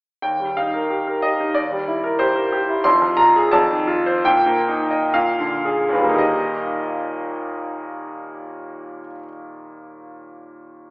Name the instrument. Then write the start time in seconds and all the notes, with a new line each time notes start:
grand piano
0.22 D#2 G5
0.40 G3
0.57 D#4 F5
0.74 A#4
0.90 G4
1.07 A#4
1.22 G4 D#5
1.40 D#4
1.54 D#2 D5
1.72 G3
1.88 E4
2.04 A#4
2.19 G4 C5
2.36 A#4
2.52 G4
2.69 E4
2.84 F2 C6
3.02 F3
3.17 F4 A#5
3.36 G#4
3.52 F2 A5
3.70 D#3
3.88 F4
4.06 C5
4.25 A#2 G5
4.46 A#3
4.69 D#4
4.91 D#5
5.14 A#2 F5
5.39 D3
5.65 G#4
5.89 D#2 B4
5.94 A#2
5.99 G3
6.04 A#3
6.09 D#4
6.14 G4 D#5